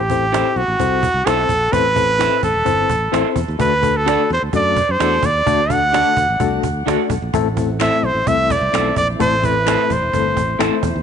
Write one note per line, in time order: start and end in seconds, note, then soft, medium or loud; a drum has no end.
0.00 0.42 A1 medium
0.00 0.53 A2 medium
0.00 0.58 G4 medium
0.10 0.23 C4 medium
0.10 0.24 E4 medium
0.10 0.24 A4 medium
0.10 0.24 C5 medium
0.10 cajon bass medium
0.32 0.60 C4 medium
0.32 0.46 E4 medium
0.32 0.60 E4 medium
0.32 0.47 A4 medium
0.32 0.60 A4 medium
0.32 0.47 C5 medium
0.32 0.60 C5 medium
0.32 0.47 E5 medium
0.32 cajon slap loud
0.56 0.65 B1 medium
0.56 1.27 F#4 medium
0.56 cajon slap soft
0.68 0.77 A1 medium
0.79 1.07 C2 medium
0.79 1.06 C4 medium
0.79 1.06 E4 medium
0.79 1.07 A4 medium
0.79 1.07 C5 medium
0.79 cajon bass medium
0.79 cajon slap medium
1.03 cajon bass medium
1.14 1.23 C2 medium
1.26 1.44 B1 medium
1.26 1.53 C4 medium
1.26 1.40 E4 medium
1.26 1.53 E4 medium
1.26 1.74 A4 medium
1.26 1.40 A4 medium
1.26 1.53 A4 medium
1.26 1.53 C5 medium
1.26 1.40 C5 medium
1.26 1.41 E5 medium
1.26 cajon slap loud
1.49 1.67 A#1 medium
1.49 cajon bass medium
1.63 cajon slap soft
1.72 2.28 A1 loud
1.72 2.39 A2 medium
1.72 1.86 C4 medium
1.72 1.86 E4 medium
1.72 1.86 A4 medium
1.72 2.43 B4 loud
1.72 1.86 C5 medium
1.72 cajon bass loud
1.96 2.09 C4 medium
1.96 2.09 E4 medium
1.96 2.10 A4 medium
1.96 2.10 C5 medium
1.96 cajon bass medium
2.19 2.46 C4 medium
2.19 2.33 E4 medium
2.19 2.46 E4 medium
2.19 2.46 A4 medium
2.19 2.33 A4 medium
2.19 2.47 C5 medium
2.19 2.34 C5 medium
2.19 2.34 E5 medium
2.19 cajon slap loud
2.43 2.52 A1 medium
2.43 3.33 A4 medium
2.43 cajon bass medium
2.55 2.64 E1 medium
2.65 2.84 G1 medium
2.65 2.92 C4 medium
2.65 2.93 E4 medium
2.65 2.93 A4 medium
2.65 2.93 C5 medium
2.65 cajon bass medium
2.65 cajon slap soft
2.90 3.08 A1 medium
2.90 cajon bass medium
3.12 3.22 A1 medium
3.12 3.39 C4 medium
3.12 3.26 E4 medium
3.12 3.40 E4 medium
3.12 3.40 A4 medium
3.12 3.27 A4 medium
3.12 3.40 C5 medium
3.12 3.27 C5 medium
3.12 3.27 E5 medium
3.12 cajon slap medium
3.36 3.45 E2 medium
3.36 cajon bass medium
3.48 3.57 D#2 loud
3.48 cajon slap soft
3.59 4.15 D2 loud
3.59 4.25 D3 medium
3.59 3.73 A3 medium
3.59 3.73 D4 medium
3.59 3.73 F#4 medium
3.59 3.73 A4 medium
3.59 3.98 B4 medium
3.59 cajon bass loud
3.82 3.96 A3 medium
3.82 3.96 D4 medium
3.82 3.96 F#4 medium
3.82 3.96 A4 medium
3.82 cajon bass medium
3.97 4.31 A4 medium
4.05 4.33 A3 medium
4.05 4.20 D4 medium
4.05 4.33 D4 medium
4.05 4.20 F#4 medium
4.05 4.33 F#4 medium
4.05 4.33 A4 medium
4.05 4.20 A4 medium
4.05 4.21 D5 medium
4.05 cajon slap loud
4.29 4.39 E2 medium
4.29 4.43 C5 medium
4.29 cajon slap soft
4.42 4.51 D2 medium
4.53 4.80 F#2 medium
4.53 4.80 A3 medium
4.53 4.80 D4 medium
4.53 4.80 F#4 medium
4.53 4.80 A4 medium
4.53 4.93 D5 loud
4.53 cajon bass medium
4.53 cajon slap soft
4.77 cajon bass medium
4.89 4.98 F#2 medium
4.89 5.27 C5 medium
4.99 5.18 E2 medium
4.99 5.27 A3 medium
4.99 5.13 D4 medium
4.99 5.27 D4 medium
4.99 5.14 F#4 medium
4.99 5.27 F#4 medium
4.99 5.27 A4 medium
4.99 5.14 A4 medium
4.99 5.14 D5 medium
4.99 cajon slap loud
5.23 5.41 D#2 medium
5.23 5.73 D5 loud
5.23 cajon bass loud
5.36 cajon slap soft
5.46 6.02 D2 loud
5.46 6.13 D3 medium
5.46 5.60 A3 medium
5.46 5.60 D4 medium
5.46 5.60 F#4 medium
5.46 5.60 A4 medium
5.46 cajon bass loud
5.69 5.83 A3 medium
5.69 5.83 D4 medium
5.69 5.83 F#4 medium
5.69 5.84 A4 medium
5.69 6.64 F#5 loud
5.69 cajon bass medium
5.92 6.20 A3 medium
5.92 6.06 D4 medium
5.92 6.20 D4 medium
5.92 6.07 F#4 medium
5.92 6.21 F#4 medium
5.92 6.07 A4 medium
5.92 6.21 A4 medium
5.92 6.07 D5 medium
5.92 cajon slap loud
6.17 6.26 D2 medium
6.17 cajon bass medium
6.29 6.38 A1 medium
6.40 6.58 C2 medium
6.40 6.67 A3 medium
6.40 6.67 D4 medium
6.40 6.67 F#4 medium
6.40 6.67 A4 medium
6.40 cajon bass medium
6.40 cajon slap soft
6.63 6.82 D2 medium
6.63 cajon bass medium
6.63 cajon slap soft
6.86 6.96 D2 medium
6.86 7.13 A3 medium
6.86 7.00 D4 medium
6.86 7.13 D4 medium
6.86 7.00 F#4 medium
6.86 7.14 F#4 medium
6.86 7.00 A4 medium
6.86 7.14 A4 medium
6.86 7.01 D5 medium
6.86 cajon slap loud
7.10 7.19 B1 medium
7.10 cajon bass medium
7.22 7.31 A#1 medium
7.33 7.89 A1 loud
7.33 8.00 A2 medium
7.33 11.03 E3 medium
7.33 11.03 A3 medium
7.33 7.47 A3 loud
7.33 11.03 C4 medium
7.33 7.47 C4 medium
7.33 11.03 E4 medium
7.33 7.47 E4 loud
7.33 7.47 A4 loud
7.33 cajon bass loud
7.57 7.70 A3 medium
7.57 7.70 C4 medium
7.57 7.71 E4 medium
7.57 7.71 A4 medium
7.57 cajon bass medium
7.79 8.07 A3 medium
7.79 8.07 C4 medium
7.79 7.93 E4 medium
7.79 8.07 E4 medium
7.79 7.94 A4 medium
7.79 8.08 A4 medium
7.79 7.94 C5 medium
7.79 7.94 E5 medium
7.79 8.07 E5 medium
7.79 finger snap medium
7.79 cajon slap loud
8.03 8.12 B1 medium
8.03 8.29 C5 medium
8.03 cajon slap soft
8.15 8.24 A1 medium
8.27 8.54 C2 medium
8.27 8.53 A3 medium
8.27 8.54 C4 medium
8.27 8.54 E4 medium
8.27 8.54 A4 medium
8.27 8.53 E5 loud
8.27 cajon bass medium
8.27 cajon slap medium
8.50 8.97 D5 medium
8.50 cajon bass medium
8.61 8.70 C2 medium
8.73 8.91 B1 medium
8.73 9.00 A3 medium
8.73 9.00 C4 medium
8.73 8.87 E4 medium
8.73 9.00 E4 medium
8.73 9.00 A4 medium
8.73 8.87 A4 medium
8.73 8.88 C5 medium
8.73 8.88 E5 medium
8.73 finger snap loud
8.73 cajon slap loud
8.96 9.15 A#1 medium
8.96 9.08 D5 medium
8.96 cajon bass medium
9.10 cajon slap soft
9.20 9.76 A1 loud
9.20 9.86 A2 medium
9.20 9.33 A3 medium
9.20 9.33 C4 medium
9.20 9.34 E4 medium
9.20 9.34 A4 medium
9.20 9.47 C5 loud
9.20 cajon bass loud
9.43 9.56 A3 medium
9.43 9.56 C4 medium
9.43 9.57 E4 soft
9.43 9.57 A4 medium
9.43 9.94 B4 medium
9.43 cajon bass medium
9.66 9.93 A3 medium
9.66 9.94 C4 medium
9.66 9.80 E4 medium
9.66 9.94 E4 medium
9.66 9.80 A4 medium
9.66 9.94 A4 medium
9.66 9.81 C5 medium
9.66 9.81 E5 medium
9.66 finger snap medium
9.66 cajon slap loud
9.90 9.99 A1 medium
9.90 10.85 C5 medium
9.90 cajon bass medium
10.02 10.11 E1 medium
10.13 10.32 G1 loud
10.13 10.40 A3 medium
10.13 10.40 C4 medium
10.13 10.41 E4 medium
10.13 10.41 A4 medium
10.13 cajon bass medium
10.13 cajon slap medium
10.37 10.55 A1 medium
10.37 cajon bass medium
10.59 10.69 A1 medium
10.59 10.86 A3 medium
10.59 10.87 C4 medium
10.59 10.73 E4 medium
10.59 10.87 E4 medium
10.59 10.74 A4 medium
10.59 10.87 A4 loud
10.59 10.74 C5 medium
10.59 10.74 E5 medium
10.59 finger snap loud
10.59 cajon slap loud
10.83 10.92 E2 medium
10.83 cajon bass loud
10.96 11.03 D#2 medium
10.96 cajon slap soft